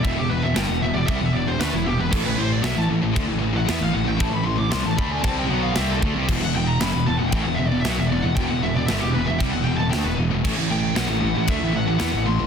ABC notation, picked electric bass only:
X:1
M:4/4
L:1/16
Q:1/4=116
K:Em
V:1 name="Picked electric bass" clef=bass
E,,, E,,, E,,, E,,, G,,, E,,, E,,, E,,, C,, E,,, E,,, E,,, D,, E,,, E,,, E,,, | A,,, A,,, A,,,2 B,,, A,,, A,,, A,,, D,, A,,, A,,, A,,, E,, A,,, A,,, A,,, | A,,, A,,, A,,, A,,, C,, A,,, D,,2 C,,2 B,,,2 C,,2 D,, C,, | E,,, E,,, E,,,2 F,,, E,,, E,,, E,,, A,,, E,,, E,,, E,,, B,,, E,,, E,,, E,,, |
E,,, E,,, E,,, E,,, G,,, E,,, E,,, E,,, C,, E,,, E,,, E,,, D,, E,,, E,,, E,,, | A,,, A,,, A,,,2 B,,, A,,, A,,, A,,, D,, A,,, A,,, A,,, E,, A,,, A,,, A,,, |]